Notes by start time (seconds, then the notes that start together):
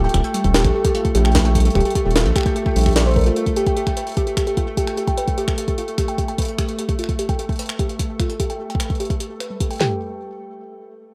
Already playing: A3 A4
0.04 G5
0.09 closed hi-hat
0.14 D#1 G4, finger snap, kick, closed hi-hat
0.24 G5, closed hi-hat
0.34 G3, closed hi-hat
0.44 D#1, kick, closed hi-hat
0.54 G4, snare, closed hi-hat
0.64 A#1 G4, finger snap, kick, closed hi-hat
0.75 G4
0.85 G4, kick, closed hi-hat
0.95 F4, closed hi-hat
1.05 kick, closed hi-hat
1.15 A#1 G4, closed hi-hat
1.25 G5, finger snap, closed hi-hat
1.32 snare, closed hi-hat
1.35 G4, kick, closed hi-hat
1.38 closed hi-hat
1.45 G5, closed hi-hat
1.55 G3, kick, closed hi-hat
1.60 closed hi-hat
1.65 closed hi-hat
1.70 closed hi-hat
1.75 D#1 G4, finger snap, kick, closed hi-hat
1.80 closed hi-hat
1.85 G4, closed hi-hat
1.90 closed hi-hat
1.95 G4, kick, closed hi-hat
2.05 D#1 G4
2.11 closed hi-hat
2.16 F4, snare, closed hi-hat
2.26 A#1, closed hi-hat
2.36 G4, finger snap, kick, closed hi-hat
2.38 finger snap
2.41 finger snap
2.43 G5, finger snap, kick, closed hi-hat
2.56 G4, closed hi-hat
2.66 G5, kick
2.76 A#1 G3, closed hi-hat
2.78 closed hi-hat
2.81 closed hi-hat
2.83 finger snap, kick, closed hi-hat
2.86 G4, closed hi-hat
2.89 closed hi-hat
2.91 closed hi-hat
2.93 snare, closed hi-hat
2.96 D5, closed hi-hat
2.99 closed hi-hat
3.06 C5, closed hi-hat
3.09 closed hi-hat
3.11 closed hi-hat
3.14 closed hi-hat
3.16 A#4, kick, closed hi-hat
3.19 closed hi-hat
3.21 closed hi-hat
3.24 closed hi-hat
3.26 F4, closed hi-hat
3.36 F4, closed hi-hat
3.46 kick, closed hi-hat
3.56 G4, closed hi-hat
3.66 G5, kick, closed hi-hat
3.77 G4, closed hi-hat
3.87 G5, finger snap, kick, closed hi-hat
3.97 B4, closed hi-hat
4.07 closed hi-hat
4.09 closed hi-hat
4.12 closed hi-hat
4.14 closed hi-hat
4.17 G4, kick, closed hi-hat
4.27 G4, closed hi-hat
4.37 G4, finger snap, kick, closed hi-hat
4.47 G4, closed hi-hat
4.57 F4, kick, closed hi-hat
4.77 G4, kick, closed hi-hat
4.87 G5, finger snap, closed hi-hat
4.97 G4, closed hi-hat
5.08 G5, kick, closed hi-hat
5.18 B4, closed hi-hat
5.28 kick, closed hi-hat
5.38 G4, closed hi-hat
5.48 G4, finger snap, kick, closed hi-hat
5.58 G4, closed hi-hat
5.68 G4, kick, closed hi-hat
5.78 F4, closed hi-hat
5.88 closed hi-hat
5.98 G4, finger snap, kick, closed hi-hat
6.08 G5, closed hi-hat
6.18 G4, kick, closed hi-hat
6.28 G5, closed hi-hat
6.38 B4, kick, closed hi-hat
6.42 closed hi-hat
6.45 closed hi-hat
6.48 closed hi-hat
6.58 G4, finger snap, kick, closed hi-hat
6.69 G4, closed hi-hat
6.79 G4, closed hi-hat
6.89 G4, kick, closed hi-hat
6.99 F4, closed hi-hat
7.04 finger snap
7.09 kick, closed hi-hat
7.19 G4, closed hi-hat
7.29 G5, kick, closed hi-hat
7.39 G4, closed hi-hat
7.49 G5, kick, closed hi-hat
7.52 closed hi-hat
7.56 closed hi-hat
7.59 B4, closed hi-hat
7.62 closed hi-hat
7.66 finger snap, closed hi-hat
7.69 closed hi-hat
7.79 G4, kick, closed hi-hat
7.89 closed hi-hat
7.99 G4, kick, closed hi-hat
8.10 G4
8.20 F4, finger snap, kick, closed hi-hat
8.30 closed hi-hat
8.40 G4, kick, closed hi-hat
8.50 G5, closed hi-hat
8.60 G4
8.70 G5, closed hi-hat
8.75 kick
8.80 B4, finger snap, closed hi-hat
8.90 kick, closed hi-hat
8.95 closed hi-hat
9.00 G4, closed hi-hat
9.05 closed hi-hat
9.10 kick, closed hi-hat
9.20 G4, closed hi-hat
9.30 G4
9.40 B4, finger snap, closed hi-hat
9.50 G3
9.60 G4, kick, closed hi-hat
9.71 G5, closed hi-hat
9.73 closed hi-hat
9.76 closed hi-hat
9.78 G4, snare, clap, closed hi-hat, floor tom